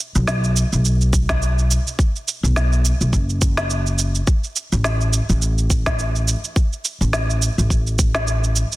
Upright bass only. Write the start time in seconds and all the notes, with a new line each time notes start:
0.15 B1
0.72 B1
2.43 B1
3.01 B1
3.13 F#1
4.72 A1
5.29 A1
7.01 A1
7.58 A1